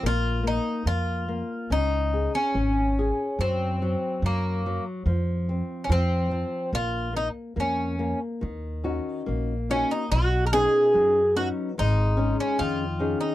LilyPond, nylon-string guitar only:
\new Staff \with { instrumentName = "Nylon-string guitar" } { \time 2/4 \key bes \minor \tempo 4 = 72 bes8 bes8 bes8 bes8 | des'8 aes'8 des'8 aes'8 | ges8 ges8 ges8 ges8 | f8 c'8 f8 f8 |
bes8 bes8 bes8 bes8 | \key ees \minor ees8 <des' ees' ges'>8 bes8 <des' ees' ges'>8 | b,8 <b cis' dis'>8 fis8 <b cis' dis'>8 | aes8 <des' ees' aes'>8 ees8 <des' ees' aes'>8 | }